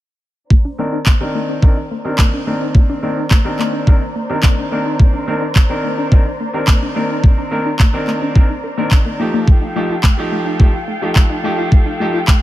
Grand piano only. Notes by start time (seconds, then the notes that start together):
0.79 D#3 C4 D4 A#4
1.20 D#3 C4 D4 A#4
1.63 D#3 C4 D4 A#4
2.05 D#3 C4 D4 A#4
2.47 D#3 C4 D4 A#4
3.03 D#3 C4 D4 A#4
3.45 D#3 C4 D4 A#4
3.87 D#3 C4 D4 A#4
4.30 D#3 C4 D4 A#4
4.71 D#3 C4 D4 A#4
5.27 D#3 C4 D4 A#4
5.70 D#3 C4 D4 A#4
6.12 D#3 C4 D4 A#4
6.53 D#3 C4 D4 A#4
6.95 D#3 C4 D4 A#4
7.51 D#3 C4 D4 A#4
7.94 D#3 C4 D4 A#4
8.35 D#3 C4 D4 A#4
8.77 D#3 C4 D4 A#4
9.19 F3 A3 D#4 G4
9.76 F3 A3 D#4 G4
10.18 F3 A3 D#4 G4
10.60 F3 A3 D#4 G4
11.02 F3 A3 D#4 G4
11.44 F3 A3 D#4 G4
12.00 F3 A3 D#4 G4